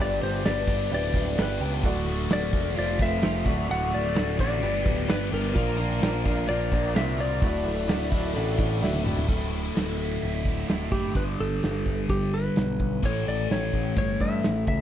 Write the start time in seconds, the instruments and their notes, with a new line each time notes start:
Already playing: picked electric bass G1, overdriven electric guitar G2 D3 G3 D4, upright piano G4
0.00 overdriven electric guitar B3 G4, tonewheel organ D4 G4 B4, upright piano B4 D5, electric slide guitar D5
0.21 picked electric bass G1, overdriven electric guitar G3 B3 D4 G4, electric slide guitar C5, crash
0.44 picked electric bass G1, overdriven electric guitar G3 B3 D4 G4, upright piano G4 B4 D5, electric slide guitar D5, snare, crash
0.67 picked electric bass G1, overdriven electric guitar G3 B3 D4 G4, kick, crash
0.90 picked electric bass D1, overdriven electric guitar G2 D3 G3 B3 D4 G4, upright piano G4 B4 E5, crash
0.94 electric slide guitar D5
1.14 picked electric bass D1, upright piano G4 B4 E5, kick, crash
1.38 picked electric bass G1, overdriven electric guitar G3 B3 D4 G4, upright piano G4 B4 D5, snare, crash
1.42 electric slide guitar B4
1.50 snare
1.60 picked electric bass C#2, overdriven electric guitar G3 B3 D4 G4, crash
1.83 picked electric bass D1, overdriven electric guitar D2 A2 D3 A3 F#4, tonewheel organ D4 F#4 A4, upright piano F#4 A4 D5, kick, crash
2.07 overdriven electric guitar D3 A3 F#4, crash
2.29 picked electric bass D1, overdriven electric guitar A2 D3 A3 F#4, upright piano F#4 A4 D5, snare, crash
2.33 electric slide guitar D5
2.52 picked electric bass E1, overdriven electric guitar D3 A3 F#4, kick, crash
2.74 picked electric bass F1, overdriven electric guitar F2 C3 F3 A3 C4 F4, tonewheel organ C4 F4 A4, upright piano F4 A4 C5, crash
2.79 electric slide guitar D5
2.99 picked electric bass F1, upright piano F4 A4 B4, electric slide guitar E5, kick, crash
3.22 picked electric bass F1, overdriven electric guitar F3 A3 C4 F4, upright piano F4 A4 C5, snare, crash
3.45 picked electric bass D1, overdriven electric guitar D2 A2 D3 A3 F#4, tonewheel organ D4 F#4 A4, upright piano F#4 A4 D5, kick, crash
3.68 picked electric bass D1, overdriven electric guitar D2 A2 D3 A3 F#4, electric slide guitar F#5, crash
3.91 picked electric bass D1, overdriven electric guitar D3 A3 F#4, electric slide guitar D5, crash
4.15 picked electric bass D1, overdriven electric guitar A2 D3 A3 F#4, upright piano F#4 A4 D5, snare, crash
4.38 picked electric bass A1, overdriven electric guitar D3 A3 F#4, electric slide guitar D5, kick, crash
4.61 picked electric bass G1, overdriven electric guitar G2 D3 G3 B3 D4 G4, tonewheel organ D4 G4 B4, upright piano G4 B4 D5, crash
4.84 picked electric bass D1, upright piano G4 B4 D5, kick, crash
5.07 picked electric bass G1, overdriven electric guitar G3 B3 D4 G4, upright piano G4 B4 D5, electric slide guitar B4, snare, crash
5.22 snare
5.31 picked electric bass G1, overdriven electric guitar G3 B3 D4 G4, electric slide guitar A#4, crash
5.53 picked electric bass A#1, overdriven electric guitar A#2 F3 A#3 D4 F4 A#4, tonewheel organ D4 F4 A#4, upright piano F4 A#4 D5, kick, crash
5.78 overdriven electric guitar A#3 D4 F4 A#4, crash
6.01 picked electric bass A#1, overdriven electric guitar A#3 D4 F4 A#4, upright piano F4 A#4 D5, snare, crash
6.24 picked electric bass A#1, overdriven electric guitar A#3 D4 F4 A#4, kick, crash
6.47 picked electric bass A#1, overdriven electric guitar A#2 F3 A#3 D4 F4 A#4, upright piano F4 A#4 D5, electric slide guitar D5, crash
6.72 picked electric bass A#1, upright piano F4 A#4 D5, kick, crash
6.94 picked electric bass C2, overdriven electric guitar A#3 D4 F4 A#4, upright piano F4 A#4 E5, electric slide guitar E5, snare, crash
7.08 snare
7.18 overdriven electric guitar A#3 D4 F4 A#4, electric slide guitar D5, crash
7.42 picked electric bass D1, overdriven electric guitar D2 A2 D3 A3 E4, tonewheel organ D4 E4 F#4, upright piano E4 F#4 D5, kick, crash
7.65 picked electric bass D1, overdriven electric guitar D3 A3 E4, crash
7.87 picked electric bass D1, overdriven electric guitar A2 D3 A3 E4, upright piano E4 F#4 D5, snare, crash
8.10 picked electric bass D1, overdriven electric guitar D3 A3 E4, kick, crash
8.32 overdriven electric guitar D2 A2 D3 A3 E4, upright piano E4, crash
8.36 picked electric bass A1, upright piano F#4 D5
8.59 picked electric bass A1, upright piano E4 F#4 D5, kick, crash
8.81 picked electric bass D1, overdriven electric guitar A2 D3 A3 E4, upright piano E4 F#4 D5, snare
8.94 high tom
9.04 picked electric bass D1, overdriven electric guitar D3 A3 E4, mid tom
9.17 floor tom
9.27 picked electric bass D1, overdriven electric guitar D2 A2 D3 A3 E4, kick, crash
9.51 overdriven electric guitar D3 A3 E4, open hi-hat
9.74 picked electric bass D1, overdriven electric guitar D2 A2 D3 A3 E4, snare, open hi-hat
9.97 overdriven electric guitar D3 A3 E4, open hi-hat
10.22 picked electric bass D1, open hi-hat
10.45 kick, open hi-hat
10.68 picked electric bass D1, overdriven electric guitar A2 D3 A3 E4, snare, open hi-hat
10.91 picked electric bass F#1, overdriven electric guitar D3 A3 E4, electric slide guitar G4, kick, open hi-hat
11.13 picked electric bass G1, overdriven electric guitar G2 D3 G3, kick, closed hi-hat
11.17 electric slide guitar B4
11.39 picked electric bass G1, electric slide guitar A4, closed hi-hat
11.63 picked electric bass G1, snare, closed hi-hat
11.86 picked electric bass G1, kick, closed hi-hat
12.09 picked electric bass G1, electric slide guitar G4, kick, closed hi-hat
12.33 electric slide guitar B4, closed hi-hat
12.56 picked electric bass B1, snare, closed hi-hat
12.80 picked electric bass B1, kick, closed hi-hat
13.02 picked electric bass A1, overdriven electric guitar A2 E3 A3, electric slide guitar C#5, kick, closed hi-hat
13.26 picked electric bass A1, electric slide guitar D5, closed hi-hat
13.50 picked electric bass A1, electric slide guitar C#5, snare, closed hi-hat
13.73 picked electric bass A1, kick, closed hi-hat
13.96 picked electric bass G1, electric slide guitar C#5, kick, closed hi-hat
14.20 picked electric bass G2, electric slide guitar E5, kick, closed hi-hat
14.43 picked electric bass A1, snare, closed hi-hat
14.67 picked electric bass C#2, electric slide guitar E5, kick, closed hi-hat